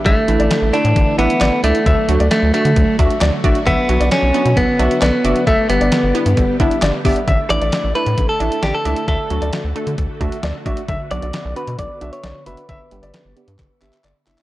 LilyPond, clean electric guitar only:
\new Staff \with { instrumentName = "Clean electric guitar" } { \time 4/4 \key a \mixolydian \tempo 4 = 133 a4. d'4 b4 a8~ | a4 a8 a4 r4. | b4 cis'4 b4 b4 | a8 b2 r4. |
r8 d''4 b'8. a'8. g'16 a'8. | a'4 r2. | r8 d''4 b'8 d''8. cis''8. b'8~ | b'2. r4 | }